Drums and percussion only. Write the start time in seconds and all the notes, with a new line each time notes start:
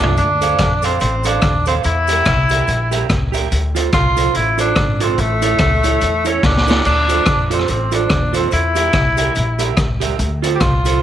0.03 floor tom
0.17 closed hi-hat, cabasa
0.42 closed hi-hat, cabasa
0.58 kick, cross-stick, closed hi-hat, cabasa
0.82 closed hi-hat, cabasa
1.00 closed hi-hat, cabasa
1.24 closed hi-hat, cabasa
1.42 kick, cross-stick, closed hi-hat, cabasa
1.66 closed hi-hat, cabasa
1.84 closed hi-hat, cabasa
2.07 closed hi-hat, cabasa
2.25 kick, cross-stick, closed hi-hat, cabasa
2.49 closed hi-hat, cabasa
2.67 closed hi-hat, cabasa
2.92 closed hi-hat, cabasa
3.10 kick, cross-stick, closed hi-hat, cabasa
3.34 closed hi-hat, cabasa
3.52 closed hi-hat, cabasa
3.76 closed hi-hat, cabasa
3.92 kick, cross-stick, closed hi-hat, cabasa
4.17 closed hi-hat, cabasa
4.34 closed hi-hat, cabasa
4.58 closed hi-hat, cabasa
4.76 kick, cross-stick, closed hi-hat, cabasa
5.00 closed hi-hat, cabasa
5.18 closed hi-hat, cabasa
5.42 closed hi-hat, cabasa
5.58 kick, cross-stick, closed hi-hat, cabasa
5.84 closed hi-hat, cabasa
6.01 closed hi-hat, cabasa
6.25 closed hi-hat, cabasa
6.43 kick, snare, cabasa
6.57 snare
6.67 snare, cabasa
6.85 crash, cabasa
7.09 closed hi-hat, cabasa
7.25 kick, cross-stick, closed hi-hat, cabasa
7.51 closed hi-hat, cabasa
7.59 cross-stick
7.68 closed hi-hat, cabasa
7.92 closed hi-hat, cabasa
8.10 kick, cross-stick, closed hi-hat, cabasa
8.34 closed hi-hat, cabasa
8.51 closed hi-hat, cabasa
8.76 closed hi-hat, cabasa
8.93 kick, cross-stick, closed hi-hat, cabasa
9.17 closed hi-hat, cabasa
9.35 closed hi-hat, cabasa
9.59 closed hi-hat, cabasa
9.77 kick, cross-stick, closed hi-hat, cabasa
10.01 closed hi-hat, cabasa
10.19 closed hi-hat, cabasa
10.44 closed hi-hat, cabasa
10.60 kick, cross-stick, closed hi-hat, cabasa
10.85 closed hi-hat, cabasa